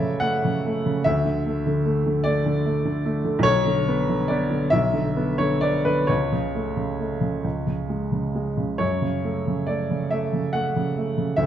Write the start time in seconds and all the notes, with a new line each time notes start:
Already playing: F#2 C#3 A3 B4 C#5 D5 E5
0.20 A3 F#5
0.45 C#3
0.66 A3
0.86 C#3
1.04 D2 E5
1.25 D3
1.46 A3
1.66 D3
1.85 A3
2.06 D3
2.24 A3 D5
2.46 D3
2.65 A3
2.85 D3
3.05 A3
3.25 D3
3.39 B1
3.43 C#5
3.66 D3
3.88 B3
4.09 D3
4.28 B3 D5
4.50 D3
4.70 B1 E5
4.93 D3
5.16 B3
5.38 D3 C#5
5.61 B3 D5
5.85 D3 B4
6.07 C#2 C#5
6.32 C#3
6.55 A3
6.76 C#3
7.00 A3
7.21 C#3
7.44 C#2
7.67 C#3
7.89 G#3
8.12 C#3
8.35 G#3
8.57 C#3
8.78 F#2 C#5
9.02 C#3
9.24 A3
9.47 C#3
9.67 A3 D5
9.91 C#3
10.11 A3 E5
10.33 C#3
10.53 A3 F#5
10.76 C#3
10.97 A3
11.18 C#3
11.36 D2 E5